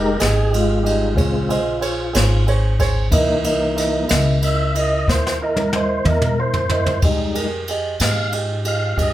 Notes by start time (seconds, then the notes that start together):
Already playing: F1 G#3 D#4 G4 G#4 A#4 D#5
0.18 G#1 G4 G#4 D#5, snare, ride
0.51 G#3 F4 G4 G#4 D#5, ride
0.83 G3 G#3 D#4 G4 G#4 D#5, ride
1.14 A#1 C#3 G#3 C4 G#4 C5 C#5, kick, ride
1.49 G#4 C5 D#5, ride
1.81 G#4 C5 C#5, ride
2.13 G#1 G#4 C5 C#5, snare, ride
2.47 G#4 C5 C#5, ride
2.79 G#4 C5 C#5, kick, snare, ride
3.10 C2 E3 A#3 D#4 E4 A#4 D#5, kick, ride
3.44 E4 A#4 D#5, ride
3.76 E4 A#4 D#5, snare, ride
4.08 C#2 E4 A#4 D#5, snare, ride
4.42 E4 A#4 D#5 E5, ride
4.75 E4 A#4 D#5, ride
4.79 D#5
5.07 D#2 E4 A#4 C5, kick, snare
5.27 snare
5.41 E4 A#4 D#5
5.57 high tom
5.73 E4 A#4 C5 D#5, high tom
6.05 E2 E4 A#4 D#5, mid tom
6.10 A#4
6.22 mid tom
6.38 E4 A#4 C5
6.54 floor tom
6.70 E4 A#4 D#5, floor tom
6.86 floor tom
7.02 F2 G3 G#3 D#4 G4 G#4 D#5, kick, ride
7.34 G4 G#4 A#4, ride
7.68 G4 G#4 D#5, ride
8.00 G#2 G4 G#4 D#5, snare, ride
8.04 F5
8.32 G4 G#4 D#5, ride
8.65 G4 G#4 D#5 F5, ride
8.97 G2 G4 G#4 D#5, kick, ride
9.01 D#5